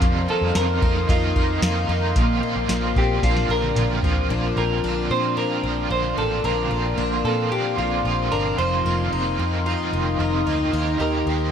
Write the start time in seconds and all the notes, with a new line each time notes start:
Already playing: F3 C4 A#4 F5
0.01 F2 C3 D#3 A#3 D#4 F4 D#5 C6, kick, closed hi-hat
0.27 A#3 D#4 F4 A4
0.32 D#3
0.41 F2
0.55 F2 C3 D#3 A#3 D#4 F4 A#4, snare, closed hi-hat, tambourine
0.81 F2 A#3 D#4 F4, kick
0.86 D#3
1.08 F2 D#3 A#3 D#4 F4, kick, closed hi-hat
1.13 F4
1.34 F2 A#3 D#4 F4, kick
1.39 D#3
1.61 F2 C3 D#3 A#3 D#4 F4, snare, closed hi-hat, tambourine
1.88 F2 D#3 A#3 D#4 F4
1.94 D#3
2.15 A#1 A#2 D3 F3 A#3 C4 F4 D5, kick, closed hi-hat
2.41 A#3 C4 F4
2.47 F3
2.56 A#1
2.69 A#1 A#2 D3 F3 A#3 C4 F4, snare, closed hi-hat, tambourine
2.95 A#1 A#3 C4 F4 G4, kick
3.00 F3
3.21 A#1 F3 A#3 C4 D4 F4, kick, snare, closed hi-hat
3.26 F4
3.37 snare
3.48 A#1 A#3 C4 F4 A#4
3.53 F3
3.63 high tom
3.75 A#1 A#2 D3 F3 A#3 C4 D4 F4, closed hi-hat, mid tom
4.02 A#1 A#3 C4 F4, floor tom
4.07 F3
4.16 floor tom
4.29 A#1 A#2 D3 F3 A#3 C4 D4 F4 A#4 D5 F5 C6
4.55 A#1 A#3 C4 F4 A#4
4.60 F3
4.82 A#1 A#2 D3 F3 A#3 C4 D4 F4
5.09 A#2 A#3 C4 F4 C5
5.14 F3
5.35 F3 A#3 C4 D4 A#4
5.40 F4
5.62 A#1 F3 A#3 C4 F4
5.68 F3
5.89 A#1 A#2 D3 F3 A#3 C4 F4 C5
6.15 A1 A#3 C4 D4 F4 A4
6.20 F3
6.42 A#1 A#2 D3 F3 A#3 C4 D4 F4 A#4
6.69 A#1 A#3 C4 F4
6.74 F3
6.96 A#1 A#2 D3 F3 A#3 C4 D4 F4
7.22 A#2 A#3 C4 F4 A4
7.27 F3
7.49 F3 A#3 C4 D4 G4
7.54 F4
7.76 A#1 A#3 C4 F4
7.81 F3
8.03 A#1 A#2 D3 F3 A#3 C4 F4
8.30 G1 A#3 C4 D4 F4 A#4
8.34 F3
8.57 F1 F2 C3 D#3 A#3 C4 D#4 F4 C5 D#5 C6
8.83 F1 A#3 C4 F4
8.88 D#3
9.11 F1 F2 C3 D#3 A#3 C4 D#4 F4
9.37 F2 A#3 C4 F4
9.42 D#3
9.64 D#3 A#3 C4 D#4 F4
9.69 F4
9.91 F1 A#3 C4 F4
9.96 D#3
10.18 F1 F2 C3 D#3 A#3 C4 F4
10.44 D2 A#3 C4 D#4 F4
10.49 D#3
10.71 D#2 D#3 A#3 C4 G4 A#4 G5
10.98 D#2 C4 G4 A#4
11.03 A#3
11.26 D#2 D#3 A#3 C4 G4 A#4